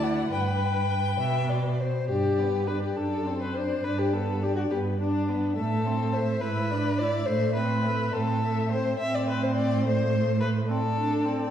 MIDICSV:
0, 0, Header, 1, 5, 480
1, 0, Start_track
1, 0, Key_signature, 1, "major"
1, 0, Tempo, 594059
1, 252, Time_signature, 6, 3, 24, 8
1, 1695, Tempo, 579151
1, 4095, Tempo, 571429
1, 9565, End_track
2, 0, Start_track
2, 0, Title_t, "Violin"
2, 0, Program_c, 0, 40
2, 27, Note_on_c, 0, 78, 70
2, 255, Note_off_c, 0, 78, 0
2, 260, Note_on_c, 0, 79, 71
2, 325, Note_on_c, 0, 78, 56
2, 337, Note_off_c, 0, 79, 0
2, 379, Note_on_c, 0, 79, 79
2, 391, Note_off_c, 0, 78, 0
2, 1462, Note_off_c, 0, 79, 0
2, 1700, Note_on_c, 0, 74, 36
2, 1956, Note_on_c, 0, 71, 36
2, 1968, Note_off_c, 0, 74, 0
2, 2199, Note_on_c, 0, 74, 36
2, 2212, Note_off_c, 0, 71, 0
2, 2429, Note_off_c, 0, 74, 0
2, 2442, Note_on_c, 0, 74, 39
2, 2674, Note_on_c, 0, 72, 38
2, 2687, Note_off_c, 0, 74, 0
2, 2926, Note_on_c, 0, 74, 39
2, 2938, Note_off_c, 0, 72, 0
2, 3150, Note_off_c, 0, 74, 0
2, 3161, Note_on_c, 0, 74, 39
2, 3401, Note_on_c, 0, 71, 38
2, 3414, Note_off_c, 0, 74, 0
2, 3631, Note_on_c, 0, 74, 41
2, 3643, Note_off_c, 0, 71, 0
2, 3858, Note_on_c, 0, 71, 43
2, 3871, Note_off_c, 0, 74, 0
2, 4094, Note_off_c, 0, 71, 0
2, 4099, Note_on_c, 0, 74, 43
2, 4341, Note_on_c, 0, 71, 40
2, 4353, Note_off_c, 0, 74, 0
2, 4574, Note_off_c, 0, 71, 0
2, 4579, Note_on_c, 0, 76, 41
2, 4818, Note_on_c, 0, 72, 43
2, 4831, Note_off_c, 0, 76, 0
2, 5062, Note_on_c, 0, 76, 42
2, 5074, Note_off_c, 0, 72, 0
2, 5298, Note_off_c, 0, 76, 0
2, 5303, Note_on_c, 0, 76, 47
2, 5532, Note_on_c, 0, 74, 46
2, 5545, Note_off_c, 0, 76, 0
2, 5780, Note_on_c, 0, 76, 43
2, 5793, Note_off_c, 0, 74, 0
2, 5994, Note_off_c, 0, 76, 0
2, 6000, Note_on_c, 0, 76, 46
2, 6265, Note_on_c, 0, 72, 47
2, 6277, Note_off_c, 0, 76, 0
2, 6477, Note_on_c, 0, 76, 49
2, 6490, Note_off_c, 0, 72, 0
2, 6719, Note_on_c, 0, 72, 49
2, 6731, Note_off_c, 0, 76, 0
2, 6964, Note_off_c, 0, 72, 0
2, 6969, Note_on_c, 0, 76, 44
2, 7201, Note_on_c, 0, 72, 47
2, 7213, Note_off_c, 0, 76, 0
2, 7445, Note_off_c, 0, 72, 0
2, 7450, Note_on_c, 0, 72, 56
2, 8853, Note_off_c, 0, 72, 0
2, 8898, Note_on_c, 0, 74, 51
2, 9565, Note_off_c, 0, 74, 0
2, 9565, End_track
3, 0, Start_track
3, 0, Title_t, "Violin"
3, 0, Program_c, 1, 40
3, 0, Note_on_c, 1, 64, 73
3, 225, Note_off_c, 1, 64, 0
3, 250, Note_on_c, 1, 71, 58
3, 909, Note_off_c, 1, 71, 0
3, 965, Note_on_c, 1, 76, 68
3, 1209, Note_on_c, 1, 74, 56
3, 1221, Note_off_c, 1, 76, 0
3, 1454, Note_on_c, 1, 72, 57
3, 1466, Note_off_c, 1, 74, 0
3, 1683, Note_off_c, 1, 72, 0
3, 1688, Note_on_c, 1, 67, 64
3, 2170, Note_on_c, 1, 71, 61
3, 2183, Note_off_c, 1, 67, 0
3, 2292, Note_off_c, 1, 71, 0
3, 2297, Note_on_c, 1, 67, 52
3, 2412, Note_on_c, 1, 69, 61
3, 2424, Note_off_c, 1, 67, 0
3, 2775, Note_off_c, 1, 69, 0
3, 2788, Note_on_c, 1, 71, 55
3, 2894, Note_on_c, 1, 72, 63
3, 2907, Note_off_c, 1, 71, 0
3, 3137, Note_on_c, 1, 71, 67
3, 3149, Note_off_c, 1, 72, 0
3, 3261, Note_on_c, 1, 67, 58
3, 3273, Note_off_c, 1, 71, 0
3, 3381, Note_on_c, 1, 69, 59
3, 3394, Note_off_c, 1, 67, 0
3, 3629, Note_on_c, 1, 67, 62
3, 3641, Note_off_c, 1, 69, 0
3, 3731, Note_off_c, 1, 67, 0
3, 3736, Note_on_c, 1, 66, 55
3, 3784, Note_off_c, 1, 66, 0
3, 3856, Note_on_c, 1, 67, 61
3, 3922, Note_off_c, 1, 67, 0
3, 4095, Note_on_c, 1, 62, 60
3, 4567, Note_off_c, 1, 62, 0
3, 4572, Note_on_c, 1, 69, 72
3, 5051, Note_on_c, 1, 72, 69
3, 5064, Note_off_c, 1, 69, 0
3, 5288, Note_on_c, 1, 71, 71
3, 5301, Note_off_c, 1, 72, 0
3, 5771, Note_on_c, 1, 74, 72
3, 5784, Note_off_c, 1, 71, 0
3, 6000, Note_on_c, 1, 72, 74
3, 6013, Note_off_c, 1, 74, 0
3, 6235, Note_off_c, 1, 72, 0
3, 6240, Note_on_c, 1, 71, 73
3, 6726, Note_on_c, 1, 69, 76
3, 6738, Note_off_c, 1, 71, 0
3, 7212, Note_off_c, 1, 69, 0
3, 7218, Note_on_c, 1, 72, 75
3, 7446, Note_off_c, 1, 72, 0
3, 7451, Note_on_c, 1, 76, 85
3, 7582, Note_on_c, 1, 74, 73
3, 7594, Note_off_c, 1, 76, 0
3, 7698, Note_off_c, 1, 74, 0
3, 7703, Note_on_c, 1, 71, 76
3, 7821, Note_on_c, 1, 72, 67
3, 7834, Note_off_c, 1, 71, 0
3, 7927, Note_off_c, 1, 72, 0
3, 7933, Note_on_c, 1, 74, 76
3, 8168, Note_off_c, 1, 74, 0
3, 8175, Note_on_c, 1, 72, 78
3, 8636, Note_off_c, 1, 72, 0
3, 8641, Note_on_c, 1, 71, 71
3, 8708, Note_off_c, 1, 71, 0
3, 8873, Note_on_c, 1, 69, 80
3, 9565, Note_off_c, 1, 69, 0
3, 9565, End_track
4, 0, Start_track
4, 0, Title_t, "Viola"
4, 0, Program_c, 2, 41
4, 0, Note_on_c, 2, 74, 70
4, 240, Note_off_c, 2, 74, 0
4, 251, Note_on_c, 2, 71, 61
4, 1313, Note_off_c, 2, 71, 0
4, 1706, Note_on_c, 2, 62, 41
4, 1934, Note_on_c, 2, 59, 37
4, 1947, Note_off_c, 2, 62, 0
4, 2171, Note_on_c, 2, 62, 37
4, 2184, Note_off_c, 2, 59, 0
4, 2409, Note_off_c, 2, 62, 0
4, 2414, Note_on_c, 2, 62, 38
4, 2653, Note_on_c, 2, 60, 37
4, 2666, Note_off_c, 2, 62, 0
4, 2898, Note_on_c, 2, 62, 39
4, 2910, Note_off_c, 2, 60, 0
4, 3130, Note_off_c, 2, 62, 0
4, 3135, Note_on_c, 2, 62, 40
4, 3378, Note_on_c, 2, 59, 40
4, 3391, Note_off_c, 2, 62, 0
4, 3618, Note_on_c, 2, 62, 41
4, 3630, Note_off_c, 2, 59, 0
4, 3863, Note_on_c, 2, 59, 41
4, 3875, Note_off_c, 2, 62, 0
4, 4095, Note_off_c, 2, 59, 0
4, 4100, Note_on_c, 2, 62, 38
4, 4342, Note_on_c, 2, 59, 40
4, 4354, Note_off_c, 2, 62, 0
4, 4574, Note_off_c, 2, 59, 0
4, 4579, Note_on_c, 2, 57, 46
4, 4820, Note_on_c, 2, 60, 42
4, 4832, Note_off_c, 2, 57, 0
4, 5054, Note_on_c, 2, 57, 47
4, 5066, Note_off_c, 2, 60, 0
4, 5293, Note_off_c, 2, 57, 0
4, 5298, Note_on_c, 2, 64, 43
4, 5539, Note_on_c, 2, 62, 45
4, 5552, Note_off_c, 2, 64, 0
4, 5777, Note_on_c, 2, 64, 47
4, 5789, Note_off_c, 2, 62, 0
4, 6009, Note_off_c, 2, 64, 0
4, 6014, Note_on_c, 2, 57, 49
4, 6253, Note_on_c, 2, 60, 44
4, 6266, Note_off_c, 2, 57, 0
4, 6494, Note_on_c, 2, 57, 46
4, 6506, Note_off_c, 2, 60, 0
4, 6733, Note_on_c, 2, 60, 46
4, 6745, Note_off_c, 2, 57, 0
4, 6968, Note_off_c, 2, 60, 0
4, 6973, Note_on_c, 2, 57, 44
4, 7215, Note_on_c, 2, 60, 47
4, 7227, Note_off_c, 2, 57, 0
4, 7451, Note_off_c, 2, 60, 0
4, 7456, Note_on_c, 2, 60, 50
4, 8175, Note_on_c, 2, 57, 53
4, 8188, Note_off_c, 2, 60, 0
4, 8882, Note_off_c, 2, 57, 0
4, 8887, Note_on_c, 2, 60, 54
4, 8954, Note_off_c, 2, 60, 0
4, 9118, Note_on_c, 2, 62, 53
4, 9351, Note_on_c, 2, 60, 58
4, 9364, Note_off_c, 2, 62, 0
4, 9565, Note_off_c, 2, 60, 0
4, 9565, End_track
5, 0, Start_track
5, 0, Title_t, "Cello"
5, 0, Program_c, 3, 42
5, 0, Note_on_c, 3, 38, 72
5, 249, Note_off_c, 3, 38, 0
5, 254, Note_on_c, 3, 43, 67
5, 959, Note_off_c, 3, 43, 0
5, 975, Note_on_c, 3, 47, 64
5, 1681, Note_off_c, 3, 47, 0
5, 1700, Note_on_c, 3, 43, 51
5, 2335, Note_off_c, 3, 43, 0
5, 2423, Note_on_c, 3, 42, 50
5, 3054, Note_off_c, 3, 42, 0
5, 3139, Note_on_c, 3, 43, 53
5, 3771, Note_off_c, 3, 43, 0
5, 3853, Note_on_c, 3, 43, 54
5, 4491, Note_off_c, 3, 43, 0
5, 4572, Note_on_c, 3, 45, 56
5, 5210, Note_off_c, 3, 45, 0
5, 5294, Note_on_c, 3, 44, 59
5, 5932, Note_off_c, 3, 44, 0
5, 6014, Note_on_c, 3, 45, 62
5, 6651, Note_off_c, 3, 45, 0
5, 6734, Note_on_c, 3, 45, 61
5, 7372, Note_off_c, 3, 45, 0
5, 7458, Note_on_c, 3, 45, 64
5, 9565, Note_off_c, 3, 45, 0
5, 9565, End_track
0, 0, End_of_file